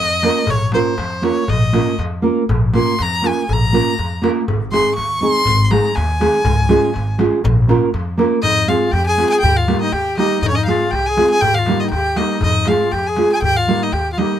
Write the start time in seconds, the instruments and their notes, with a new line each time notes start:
Already playing: upright bass F2, violin D#5
0.23 nylon-string guitar A#3 C#4 F4 A#4, darbuka tek
0.47 upright bass A#1, violin C#5, darbuka dum
0.72 nylon-string guitar A#3 C#4 F4 A#4, violin C5, darbuka tek
0.98 upright bass F2, darbuka tek
1.22 nylon-string guitar A#3 C#4 F4 A#4, violin C#5, darbuka tek
1.48 upright bass A#1, violin D#5, darbuka dum
1.73 nylon-string guitar A#3 C#4 F4 A#4, darbuka tek
1.99 upright bass F2, darbuka tek
2.22 nylon-string guitar A#3 C#4 F4 A#4
2.49 upright bass A#1, darbuka dum
2.73 nylon-string guitar A#3 C#4 F4 A#4, violin C6, darbuka tek
2.99 upright bass F2, violin A#5, darbuka tek
3.22 nylon-string guitar A#3 C#4 F4 A#4, darbuka tek
3.27 violin G#5
3.49 upright bass A#1, violin A#5, darbuka dum
3.63 darbuka tek
3.72 nylon-string guitar A#3 C#4 F4 A#4, darbuka tek
3.99 upright bass F2, darbuka tek
4.22 nylon-string guitar A#3 C#4 F4 A#4, darbuka tek
4.48 upright bass G#1, darbuka dum
4.72 nylon-string guitar G#3 C4 D#4 G#4, violin C6, darbuka tek
4.95 upright bass D#2, violin C#6, darbuka tek
5.20 nylon-string guitar G#3 C4 D#4 G#4, violin C6
5.45 upright bass G#1, darbuka dum
5.64 violin C6
5.71 nylon-string guitar G#3 C4 D#4 G#4, violin A#5, darbuka tek
5.95 upright bass D#2, violin G#5, darbuka tek
6.20 nylon-string guitar G#3 C4 D#4 G#4, darbuka tek
6.45 upright bass C#2, darbuka dum
6.69 nylon-string guitar G#3 C#4 F4 G#4, darbuka tek
6.94 upright bass G#1, darbuka tek
7.18 nylon-string guitar G#3 C#4 F4 G#4, darbuka tek
7.44 upright bass A#1, darbuka dum
7.68 nylon-string guitar A#3 C#4 F4 A#4, darbuka tek
7.94 upright bass F2, darbuka tek
8.18 nylon-string guitar A#3 C#4 F4 A#4, darbuka tek
8.42 upright bass F2, clarinet D#4, violin D#5, darbuka dum
8.58 darbuka tek
8.68 nylon-string guitar G#3 C4 F4 G#4, clarinet F4, violin F5, darbuka tek
8.82 darbuka tek
8.92 upright bass F2, clarinet G4, violin G5, darbuka tek
9.07 clarinet G#4, violin G#5
9.17 nylon-string guitar G#3 C4 F4 G#4, darbuka tek
9.30 violin G#5
9.34 clarinet G#4
9.40 upright bass D#2, violin G5, darbuka dum
9.45 clarinet G4
9.56 clarinet F4, violin F5, darbuka tek
9.67 nylon-string guitar G3 A#3 D#4 G4, darbuka tek
9.81 clarinet D#4, violin D#5, darbuka tek
9.92 upright bass D#2, clarinet G4, violin G5, darbuka tek
10.17 nylon-string guitar G3 A#3 D#4 G4, clarinet D#4, violin D#5, darbuka tek
10.42 upright bass F2, clarinet D#4, violin D#5, darbuka dum
10.48 violin C#5
10.52 clarinet C#4, violin D#5
10.58 clarinet D#4
10.65 nylon-string guitar G#3 C4 F4 G#4, violin F5, darbuka tek
10.71 clarinet F4
10.82 darbuka tek
10.91 upright bass C2, violin G5, darbuka tek
10.95 clarinet G4
11.06 clarinet G#4, violin G#5
11.17 nylon-string guitar G#3 C4 F4 G#4, darbuka tek
11.30 clarinet G#4, violin G#5
11.41 upright bass D#2, clarinet G4, violin G5, darbuka dum
11.55 violin F5
11.59 clarinet F4
11.66 nylon-string guitar G3 A#3 D#4 G4, darbuka tek
11.80 violin D#5, darbuka tek
11.85 clarinet D#4
11.90 upright bass D#2, violin G5, darbuka tek
11.97 clarinet G4
12.05 darbuka tek
12.16 nylon-string guitar G3 A#3 D#4 G4, violin D#5, darbuka tek
12.21 clarinet D#4
12.30 darbuka tek
12.41 upright bass F2, violin D#5, darbuka dum
12.45 clarinet D#4
12.55 darbuka tek
12.65 nylon-string guitar G#3 C4 F4 G#4, violin F5, darbuka tek
12.71 clarinet F4
12.80 darbuka tek
12.91 upright bass F2, clarinet G4, violin G5, darbuka tek
13.07 clarinet G#4, violin G#5
13.16 nylon-string guitar G#3 C4 F4 G#4, darbuka tek
13.32 clarinet G#4, violin G#5
13.42 upright bass D#2, clarinet G4, violin G5, darbuka dum
13.56 clarinet F4, violin F5, darbuka tek
13.68 nylon-string guitar G3 A#3 D#4 G4, darbuka tek
13.83 clarinet D#4, violin D#5, darbuka tek
13.93 upright bass D#2, clarinet G4, violin G5, darbuka tek
14.12 clarinet F4, violin F5
14.17 nylon-string guitar G3 A#3 D#4 G4, clarinet D#4, violin D#5, darbuka tek